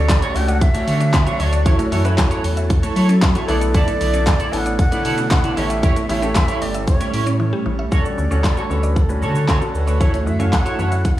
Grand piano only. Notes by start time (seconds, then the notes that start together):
Already playing: A3 D4 F#4 A4
0.35 A3 C#4 D4 F#4 A4
0.74 A3 C#4 D4 F#4 A4
1.66 A3 C#4 E4 F#4 A4
1.92 A3 C#4 E4 F#4 A4
2.05 A3 C#4 E4 F#4 B4
3.48 A3 B3 D4 E4 A4
4.52 B3 C#4 D4 E4 A4
4.92 B3 C#4 D4 E4 A4
5.57 A3 C#4 E4 G4 A4
6.09 A3 C#4 E4 G4 A4
6.22 A3 C#4 E4 G4 A4
7.92 C#4 D4 F#4 A4
8.31 C#4 D4 F#4 A4
8.70 C#4 D4 F#4 A4
9.09 C#4 D4 F#4 B4
9.61 C#4 D4 F#4 A4
10.00 C#4 E4 F#4 A4
10.39 C#4 E4 F#4 A4
10.79 C#4 E4 F#4 B4